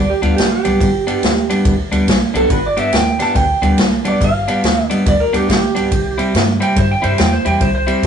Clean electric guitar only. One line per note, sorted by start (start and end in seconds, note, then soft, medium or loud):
0.22 0.47 G2 medium
0.22 0.46 G3 medium
0.22 0.46 B3 medium
0.22 0.46 D4 loud
0.65 0.89 G2 medium
0.65 0.89 G3 medium
0.65 0.89 B3 medium
0.65 0.89 D4 medium
1.07 1.31 G2 medium
1.07 1.31 G3 medium
1.07 1.31 B3 medium
1.07 1.31 D4 medium
1.50 1.74 G2 medium
1.50 1.74 G3 medium
1.50 1.74 B3 medium
1.50 1.74 D4 medium
1.92 2.16 G2 medium
1.92 2.16 G3 medium
1.92 2.16 B3 loud
1.92 2.16 D4 loud
2.34 2.59 G2 medium
2.34 2.59 G3 medium
2.34 2.59 B3 medium
2.34 2.58 D4 medium
2.77 3.01 G2 medium
2.77 3.01 G3 medium
2.77 3.01 B3 medium
2.77 3.01 D4 loud
3.19 3.44 G2 medium
3.19 3.44 G3 medium
3.19 3.43 B3 medium
3.19 3.43 D4 medium
3.62 3.87 G2 medium
3.62 3.86 G3 medium
3.62 3.86 B3 medium
3.62 3.86 D4 medium
4.05 4.29 G2 medium
4.05 4.29 G3 medium
4.05 4.29 B3 medium
4.05 4.29 D4 medium
4.48 4.72 G2 medium
4.48 4.72 G3 medium
4.48 4.72 B3 medium
4.48 4.71 D4 medium
4.90 5.14 G2 medium
4.90 5.14 G3 medium
4.90 5.14 B3 medium
4.90 5.14 D4 medium
5.33 5.57 G2 medium
5.33 5.57 G3 medium
5.33 5.57 B3 medium
5.33 5.57 D4 loud
5.75 5.91 G2 medium
5.75 5.91 G3 medium
5.75 5.91 B3 medium
5.75 5.91 D4 medium
6.18 6.42 C3 medium
6.18 6.42 G3 medium
6.18 6.42 C4 medium
6.18 6.41 E4 loud
6.60 6.84 C3 medium
6.60 6.84 G3 medium
6.60 6.84 C4 medium
6.60 6.84 E4 medium
7.02 7.27 C3 medium
7.02 7.26 G3 medium
7.02 7.26 C4 medium
7.02 7.26 E4 loud
7.45 7.69 C3 medium
7.45 7.69 G3 medium
7.45 7.69 C4 medium
7.45 7.69 E4 medium
7.87 8.07 C3 medium
7.87 8.07 G3 medium
7.87 8.07 C4 loud
7.87 8.07 E4 medium